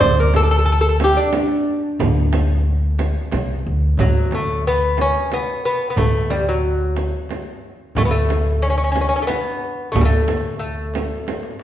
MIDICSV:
0, 0, Header, 1, 5, 480
1, 0, Start_track
1, 0, Tempo, 662252
1, 11, Time_signature, 3, 2, 24, 8
1, 8430, End_track
2, 0, Start_track
2, 0, Title_t, "Lute"
2, 0, Program_c, 0, 24
2, 3, Note_on_c, 0, 72, 91
2, 131, Note_off_c, 0, 72, 0
2, 143, Note_on_c, 0, 70, 77
2, 260, Note_off_c, 0, 70, 0
2, 262, Note_on_c, 0, 69, 85
2, 303, Note_off_c, 0, 69, 0
2, 312, Note_on_c, 0, 69, 64
2, 361, Note_off_c, 0, 69, 0
2, 369, Note_on_c, 0, 69, 77
2, 419, Note_off_c, 0, 69, 0
2, 427, Note_on_c, 0, 69, 66
2, 466, Note_off_c, 0, 69, 0
2, 475, Note_on_c, 0, 69, 77
2, 515, Note_off_c, 0, 69, 0
2, 523, Note_on_c, 0, 69, 68
2, 578, Note_off_c, 0, 69, 0
2, 587, Note_on_c, 0, 69, 80
2, 636, Note_off_c, 0, 69, 0
2, 644, Note_on_c, 0, 69, 61
2, 695, Note_off_c, 0, 69, 0
2, 753, Note_on_c, 0, 67, 77
2, 846, Note_on_c, 0, 62, 73
2, 851, Note_off_c, 0, 67, 0
2, 1609, Note_off_c, 0, 62, 0
2, 2900, Note_on_c, 0, 54, 71
2, 3142, Note_off_c, 0, 54, 0
2, 3151, Note_on_c, 0, 57, 72
2, 3385, Note_off_c, 0, 57, 0
2, 3387, Note_on_c, 0, 59, 83
2, 3626, Note_off_c, 0, 59, 0
2, 3633, Note_on_c, 0, 61, 79
2, 3864, Note_off_c, 0, 61, 0
2, 3867, Note_on_c, 0, 59, 85
2, 4089, Note_off_c, 0, 59, 0
2, 4098, Note_on_c, 0, 59, 76
2, 4269, Note_off_c, 0, 59, 0
2, 4278, Note_on_c, 0, 59, 63
2, 4329, Note_off_c, 0, 59, 0
2, 4333, Note_on_c, 0, 57, 79
2, 4567, Note_on_c, 0, 55, 71
2, 4579, Note_off_c, 0, 57, 0
2, 4692, Note_off_c, 0, 55, 0
2, 4701, Note_on_c, 0, 54, 65
2, 5387, Note_off_c, 0, 54, 0
2, 5781, Note_on_c, 0, 57, 84
2, 5828, Note_off_c, 0, 57, 0
2, 5835, Note_on_c, 0, 59, 66
2, 5876, Note_on_c, 0, 57, 85
2, 5879, Note_off_c, 0, 59, 0
2, 6251, Note_on_c, 0, 61, 95
2, 6264, Note_off_c, 0, 57, 0
2, 6296, Note_off_c, 0, 61, 0
2, 6304, Note_on_c, 0, 61, 66
2, 6352, Note_off_c, 0, 61, 0
2, 6361, Note_on_c, 0, 61, 76
2, 6398, Note_off_c, 0, 61, 0
2, 6407, Note_on_c, 0, 61, 63
2, 6455, Note_off_c, 0, 61, 0
2, 6463, Note_on_c, 0, 61, 70
2, 6522, Note_off_c, 0, 61, 0
2, 6531, Note_on_c, 0, 61, 63
2, 6579, Note_off_c, 0, 61, 0
2, 6587, Note_on_c, 0, 61, 69
2, 6631, Note_off_c, 0, 61, 0
2, 6640, Note_on_c, 0, 61, 61
2, 6681, Note_off_c, 0, 61, 0
2, 6683, Note_on_c, 0, 57, 60
2, 6717, Note_off_c, 0, 57, 0
2, 6720, Note_on_c, 0, 59, 83
2, 7186, Note_off_c, 0, 59, 0
2, 7189, Note_on_c, 0, 57, 76
2, 7246, Note_off_c, 0, 57, 0
2, 7256, Note_on_c, 0, 55, 66
2, 7283, Note_off_c, 0, 55, 0
2, 7286, Note_on_c, 0, 57, 80
2, 7650, Note_off_c, 0, 57, 0
2, 7679, Note_on_c, 0, 57, 66
2, 8375, Note_off_c, 0, 57, 0
2, 8430, End_track
3, 0, Start_track
3, 0, Title_t, "Upright bass"
3, 0, Program_c, 1, 32
3, 11, Note_on_c, 1, 38, 88
3, 833, Note_off_c, 1, 38, 0
3, 1445, Note_on_c, 1, 38, 92
3, 2269, Note_off_c, 1, 38, 0
3, 2416, Note_on_c, 1, 36, 81
3, 2629, Note_off_c, 1, 36, 0
3, 2656, Note_on_c, 1, 38, 79
3, 2869, Note_off_c, 1, 38, 0
3, 2893, Note_on_c, 1, 38, 85
3, 3714, Note_off_c, 1, 38, 0
3, 4325, Note_on_c, 1, 38, 80
3, 5150, Note_off_c, 1, 38, 0
3, 5772, Note_on_c, 1, 38, 88
3, 6594, Note_off_c, 1, 38, 0
3, 7210, Note_on_c, 1, 38, 80
3, 8032, Note_off_c, 1, 38, 0
3, 8430, End_track
4, 0, Start_track
4, 0, Title_t, "Frame drum"
4, 4, Note_on_c, 9, 64, 83
4, 76, Note_off_c, 9, 64, 0
4, 245, Note_on_c, 9, 64, 63
4, 318, Note_off_c, 9, 64, 0
4, 725, Note_on_c, 9, 64, 68
4, 797, Note_off_c, 9, 64, 0
4, 962, Note_on_c, 9, 64, 72
4, 1034, Note_off_c, 9, 64, 0
4, 1450, Note_on_c, 9, 64, 87
4, 1523, Note_off_c, 9, 64, 0
4, 1687, Note_on_c, 9, 64, 71
4, 1759, Note_off_c, 9, 64, 0
4, 2168, Note_on_c, 9, 64, 68
4, 2241, Note_off_c, 9, 64, 0
4, 2409, Note_on_c, 9, 64, 65
4, 2481, Note_off_c, 9, 64, 0
4, 2891, Note_on_c, 9, 64, 77
4, 2964, Note_off_c, 9, 64, 0
4, 3133, Note_on_c, 9, 64, 59
4, 3206, Note_off_c, 9, 64, 0
4, 3609, Note_on_c, 9, 64, 59
4, 3681, Note_off_c, 9, 64, 0
4, 3853, Note_on_c, 9, 64, 57
4, 3926, Note_off_c, 9, 64, 0
4, 4328, Note_on_c, 9, 64, 68
4, 4400, Note_off_c, 9, 64, 0
4, 4570, Note_on_c, 9, 64, 56
4, 4643, Note_off_c, 9, 64, 0
4, 5049, Note_on_c, 9, 64, 55
4, 5121, Note_off_c, 9, 64, 0
4, 5295, Note_on_c, 9, 64, 58
4, 5368, Note_off_c, 9, 64, 0
4, 5773, Note_on_c, 9, 64, 75
4, 5845, Note_off_c, 9, 64, 0
4, 6017, Note_on_c, 9, 64, 63
4, 6090, Note_off_c, 9, 64, 0
4, 6492, Note_on_c, 9, 64, 61
4, 6564, Note_off_c, 9, 64, 0
4, 6732, Note_on_c, 9, 64, 60
4, 6805, Note_off_c, 9, 64, 0
4, 7216, Note_on_c, 9, 64, 77
4, 7289, Note_off_c, 9, 64, 0
4, 7451, Note_on_c, 9, 64, 64
4, 7524, Note_off_c, 9, 64, 0
4, 7937, Note_on_c, 9, 64, 64
4, 8010, Note_off_c, 9, 64, 0
4, 8175, Note_on_c, 9, 64, 62
4, 8247, Note_off_c, 9, 64, 0
4, 8430, End_track
5, 0, Start_track
5, 0, Title_t, "Tombak"
5, 4, Note_on_c, 9, 64, 83
5, 77, Note_off_c, 9, 64, 0
5, 246, Note_on_c, 9, 63, 71
5, 318, Note_off_c, 9, 63, 0
5, 608, Note_on_c, 9, 62, 27
5, 681, Note_off_c, 9, 62, 0
5, 729, Note_on_c, 9, 63, 69
5, 801, Note_off_c, 9, 63, 0
5, 970, Note_on_c, 9, 63, 65
5, 1043, Note_off_c, 9, 63, 0
5, 1207, Note_on_c, 9, 62, 26
5, 1280, Note_off_c, 9, 62, 0
5, 1329, Note_on_c, 9, 62, 25
5, 1401, Note_off_c, 9, 62, 0
5, 1449, Note_on_c, 9, 64, 90
5, 1521, Note_off_c, 9, 64, 0
5, 1687, Note_on_c, 9, 63, 73
5, 1759, Note_off_c, 9, 63, 0
5, 1929, Note_on_c, 9, 62, 24
5, 2001, Note_off_c, 9, 62, 0
5, 2164, Note_on_c, 9, 63, 69
5, 2237, Note_off_c, 9, 63, 0
5, 2402, Note_on_c, 9, 63, 74
5, 2475, Note_off_c, 9, 63, 0
5, 2644, Note_on_c, 9, 62, 26
5, 2716, Note_off_c, 9, 62, 0
5, 2763, Note_on_c, 9, 62, 27
5, 2836, Note_off_c, 9, 62, 0
5, 2880, Note_on_c, 9, 64, 88
5, 2953, Note_off_c, 9, 64, 0
5, 3124, Note_on_c, 9, 63, 70
5, 3197, Note_off_c, 9, 63, 0
5, 3362, Note_on_c, 9, 62, 23
5, 3435, Note_off_c, 9, 62, 0
5, 3605, Note_on_c, 9, 63, 58
5, 3677, Note_off_c, 9, 63, 0
5, 3842, Note_on_c, 9, 63, 56
5, 3915, Note_off_c, 9, 63, 0
5, 4322, Note_on_c, 9, 64, 92
5, 4394, Note_off_c, 9, 64, 0
5, 4570, Note_on_c, 9, 63, 54
5, 4642, Note_off_c, 9, 63, 0
5, 4808, Note_on_c, 9, 62, 22
5, 4881, Note_off_c, 9, 62, 0
5, 5048, Note_on_c, 9, 63, 58
5, 5120, Note_off_c, 9, 63, 0
5, 5285, Note_on_c, 9, 63, 59
5, 5358, Note_off_c, 9, 63, 0
5, 5763, Note_on_c, 9, 64, 80
5, 5835, Note_off_c, 9, 64, 0
5, 6008, Note_on_c, 9, 63, 68
5, 6080, Note_off_c, 9, 63, 0
5, 6488, Note_on_c, 9, 63, 65
5, 6560, Note_off_c, 9, 63, 0
5, 6730, Note_on_c, 9, 63, 67
5, 6803, Note_off_c, 9, 63, 0
5, 7205, Note_on_c, 9, 64, 90
5, 7278, Note_off_c, 9, 64, 0
5, 7449, Note_on_c, 9, 63, 66
5, 7521, Note_off_c, 9, 63, 0
5, 7690, Note_on_c, 9, 62, 23
5, 7762, Note_off_c, 9, 62, 0
5, 7809, Note_on_c, 9, 62, 25
5, 7881, Note_off_c, 9, 62, 0
5, 7927, Note_on_c, 9, 63, 63
5, 7999, Note_off_c, 9, 63, 0
5, 8166, Note_on_c, 9, 63, 52
5, 8228, Note_on_c, 9, 62, 55
5, 8239, Note_off_c, 9, 63, 0
5, 8285, Note_on_c, 9, 63, 61
5, 8300, Note_off_c, 9, 62, 0
5, 8341, Note_on_c, 9, 62, 64
5, 8358, Note_off_c, 9, 63, 0
5, 8404, Note_on_c, 9, 63, 65
5, 8413, Note_off_c, 9, 62, 0
5, 8430, Note_off_c, 9, 63, 0
5, 8430, End_track
0, 0, End_of_file